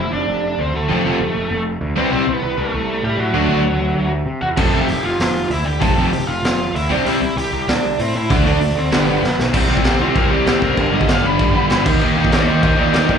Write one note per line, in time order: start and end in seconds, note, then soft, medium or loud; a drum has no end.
0.00 0.11 F1 loud
0.00 0.45 C4 medium
0.00 0.12 E4 medium
0.00 0.14 E5 medium
0.12 0.26 F1 medium
0.12 0.55 D4 medium
0.12 0.61 D5 medium
0.28 0.54 F1 medium
0.59 0.71 D2 medium
0.59 0.73 C4 medium
0.59 0.75 C5 medium
0.74 0.87 D2 medium
0.74 1.62 A3 medium
0.74 1.63 A4 medium
0.89 1.02 F1 medium
0.89 1.01 F2 medium
0.89 1.02 C3 medium
0.89 1.02 F3 medium
1.05 1.17 F1 medium
1.05 1.17 F2 medium
1.05 1.17 C3 medium
1.05 1.17 F3 medium
1.19 1.32 F1 medium
1.35 1.48 F1 loud
1.51 1.76 F1 medium
1.81 1.94 D2 medium
1.96 2.09 C2 medium
1.96 2.08 C3 medium
1.96 2.08 G3 medium
1.96 2.12 B3 medium
1.96 2.09 C4 loud
1.96 2.10 B4 medium
2.10 2.25 C2 medium
2.10 2.23 C3 medium
2.10 2.23 G3 loud
2.10 2.23 C4 loud
2.10 2.33 C4 medium
2.10 2.33 C5 loud
2.28 2.40 C2 medium
2.33 2.55 B3 medium
2.33 2.57 B4 loud
2.43 2.55 C2 loud
2.57 2.71 C2 medium
2.57 3.01 A3 medium
2.57 3.04 A4 medium
2.74 2.99 C2 medium
3.03 3.16 A2 medium
3.03 3.19 G3 medium
3.03 3.19 G4 medium
3.18 3.31 A2 medium
3.18 4.08 F#3 medium
3.18 4.11 F#4 medium
3.33 3.47 D2 medium
3.33 3.46 D3 medium
3.33 3.47 A3 medium
3.33 3.47 D4 medium
3.48 3.62 D2 medium
3.48 3.61 D3 medium
3.48 3.62 A3 loud
3.48 3.62 D4 loud
3.65 3.78 D2 medium
3.80 3.93 D2 medium
3.95 4.22 D2 loud
4.26 4.39 C3 medium
4.41 4.55 E2 medium
4.41 4.47 F#4 medium
4.41 4.46 F#5 loud
4.56 4.70 F1 medium
4.56 4.70 F2 medium
4.56 4.70 C3 medium
4.56 4.70 F3 loud
4.56 4.79 A4 medium
4.56 4.81 A5 loud
4.56 kick loud
4.56 crash loud
4.72 4.86 F1 medium
4.72 4.85 F2 medium
4.72 4.85 C3 medium
4.72 4.85 F3 loud
4.81 5.03 G4 medium
4.81 5.05 G5 medium
4.88 5.01 F1 medium
4.88 open hi-hat medium
5.04 5.17 F1 medium
5.04 5.48 F4 medium
5.04 5.47 F5 medium
5.20 5.46 F1 medium
5.20 snare loud
5.20 open hi-hat medium
5.50 5.63 D2 medium
5.50 5.65 E4 medium
5.50 5.67 E5 loud
5.50 open hi-hat medium
5.65 5.79 D2 medium
5.65 5.81 G4 medium
5.65 5.81 G5 loud
5.81 5.95 F1 medium
5.81 5.94 F2 medium
5.81 5.94 C3 medium
5.81 5.94 F3 medium
5.81 6.03 A4 medium
5.81 6.05 A5 loud
5.81 kick loud
5.81 open hi-hat medium
5.96 6.09 F1 medium
5.96 6.10 F2 loud
5.96 6.10 C3 loud
5.96 6.10 F3 loud
6.07 6.28 G4 medium
6.07 6.30 G5 loud
6.11 6.25 F1 loud
6.11 open hi-hat medium
6.27 6.41 F1 medium
6.27 6.71 F4 medium
6.27 6.75 F5 loud
6.43 6.69 F1 medium
6.43 snare loud
6.43 open hi-hat medium
6.74 6.91 D2 medium
6.74 6.90 E4 medium
6.74 6.91 E5 medium
6.74 open hi-hat medium
6.89 7.03 C2 medium
6.89 7.02 C3 medium
6.89 7.02 G3 medium
6.89 7.02 C4 medium
6.89 7.05 D4 medium
6.89 7.07 D5 medium
7.05 7.18 C2 medium
7.05 7.18 C3 medium
7.05 7.18 G3 medium
7.05 7.18 C4 medium
7.05 7.36 E4 medium
7.05 7.38 E5 loud
7.05 open hi-hat medium
7.21 7.34 C2 medium
7.36 7.50 C2 loud
7.36 7.67 G4 medium
7.36 7.66 G5 loud
7.36 open hi-hat medium
7.52 7.65 C2 medium
7.68 7.94 C2 loud
7.68 7.97 D4 medium
7.68 8.00 D5 medium
7.68 snare loud
7.68 open hi-hat medium
7.99 8.12 A2 medium
7.99 8.14 C4 medium
7.99 8.16 C5 medium
7.99 open hi-hat medium
8.15 8.28 A2 loud
8.15 8.44 E4 medium
8.15 8.47 E5 loud
8.30 8.43 D2 medium
8.30 8.43 D3 medium
8.30 8.43 A3 loud
8.30 8.43 D4 medium
8.30 kick loud
8.30 open hi-hat medium
8.45 8.58 D2 medium
8.45 8.58 D3 medium
8.45 8.58 A3 loud
8.45 8.58 D4 loud
8.45 8.75 D4 medium
8.45 8.78 D5 medium
8.61 8.74 D2 medium
8.61 open hi-hat medium
8.75 8.89 D2 loud
8.75 8.91 C4 medium
8.75 8.93 C5 medium
8.91 9.18 G1 medium
8.91 9.04 G2 loud
8.91 9.05 D3 loud
8.91 9.05 G3 loud
8.91 9.37 B3 medium
8.91 9.37 B4 medium
8.91 snare loud
8.91 open hi-hat medium
9.07 9.20 G2 medium
9.07 9.20 D3 loud
9.07 9.20 G3 loud
9.23 9.36 F2 loud
9.23 snare medium
9.38 9.54 B1 medium
9.38 snare medium
9.54 9.69 C2 medium
9.54 9.68 C3 medium
9.54 9.69 G3 loud
9.54 9.68 C4 loud
9.54 kick loud
9.54 crash loud
9.54 crash medium
9.69 9.84 C2 medium
9.69 9.83 C3 medium
9.69 9.84 G3 medium
9.69 9.84 C4 medium
9.77 kick medium
9.84 10.00 C2 medium
9.84 9.98 C3 medium
9.84 9.99 G3 medium
9.84 9.98 C4 loud
9.84 snare loud
9.84 crash medium
9.99 10.15 C2 medium
9.99 10.14 C3 medium
9.99 10.15 G3 medium
9.99 10.15 C4 medium
9.99 10.16 G4 medium
10.15 10.30 C2 medium
10.15 10.29 C3 loud
10.15 10.29 G3 loud
10.15 10.28 C4 loud
10.15 10.31 A#4 medium
10.15 kick loud
10.15 crash medium
10.29 10.46 C2 loud
10.29 10.44 C3 medium
10.29 10.46 G3 medium
10.29 10.45 C4 loud
10.29 10.61 G4 loud
10.45 10.61 C2 loud
10.45 10.61 C3 medium
10.45 10.61 G3 loud
10.45 10.60 C4 medium
10.45 snare loud
10.45 crash medium
10.61 10.77 F1 medium
10.61 10.76 C3 medium
10.61 10.76 G3 medium
10.61 10.76 C4 medium
10.61 10.93 A#4 medium
10.61 kick medium
10.76 10.92 G1 loud
10.76 10.92 G2 loud
10.76 10.91 D3 medium
10.76 10.92 G3 loud
10.76 kick loud
10.76 crash medium
10.92 11.07 G1 medium
10.92 11.06 G2 medium
10.92 11.07 D3 medium
10.92 11.07 G3 medium
10.92 11.11 D#5 medium
11.01 kick medium
11.07 11.23 G1 loud
11.07 11.23 G2 medium
11.07 11.22 D3 medium
11.07 11.22 G3 medium
11.07 11.25 F5 medium
11.07 snare loud
11.07 crash medium
11.23 11.38 G1 medium
11.23 11.37 G2 medium
11.23 11.38 D3 medium
11.23 11.38 G3 medium
11.23 11.85 B5 loud
11.38 11.54 G1 medium
11.38 11.53 G2 loud
11.38 11.53 D3 loud
11.38 11.52 G3 loud
11.38 kick loud
11.38 crash medium
11.54 11.69 G1 medium
11.54 11.69 G2 medium
11.54 11.69 D3 medium
11.54 11.69 G3 loud
11.70 11.85 G1 medium
11.70 11.85 G2 medium
11.70 11.85 D3 medium
11.70 11.85 G3 medium
11.70 snare loud
11.70 crash medium
11.86 12.00 D#2 medium
11.86 12.02 D#3 medium
11.86 12.01 A#3 medium
11.86 12.01 D#4 medium
11.86 kick loud
11.86 crash loud
12.01 12.16 D#2 medium
12.01 12.16 D#3 medium
12.01 12.16 A#3 loud
12.01 12.16 D#4 medium
12.01 crash medium
12.16 12.31 D#2 medium
12.16 12.31 D#3 medium
12.16 12.30 A#3 medium
12.16 12.30 D#4 medium
12.25 kick medium
12.31 12.46 D#2 loud
12.31 12.46 D#3 medium
12.31 12.47 A#3 medium
12.31 12.47 D#4 medium
12.31 12.47 C5 medium
12.31 12.48 D#5 medium
12.31 snare loud
12.31 crash medium
12.47 12.62 D#2 loud
12.47 12.62 D#3 medium
12.47 12.61 A#3 medium
12.47 12.61 D#4 loud
12.47 12.62 C5 medium
12.47 12.63 D#5 loud
12.62 12.77 D#2 medium
12.62 12.77 D#3 loud
12.62 12.77 A#3 loud
12.62 12.77 D#4 loud
12.62 12.78 C5 medium
12.62 12.79 D#5 medium
12.62 kick loud
12.62 crash medium
12.78 12.92 D#2 medium
12.78 12.93 D#3 medium
12.78 12.92 A#3 medium
12.78 12.92 D#4 loud
12.78 12.91 A#4 medium
12.78 12.92 D5 medium
12.93 13.08 D#2 medium
12.93 13.07 D#3 medium
12.93 13.07 A#3 medium
12.93 13.08 D#4 loud
12.93 13.07 A#4 medium
12.93 13.07 D5 medium
12.93 snare loud
12.93 crash medium
13.08 13.18 E2 medium
13.08 13.18 D#3 medium
13.08 13.18 A#3 medium
13.08 13.18 D#4 medium
13.08 13.18 A#4 medium
13.08 13.18 D5 medium
13.08 kick loud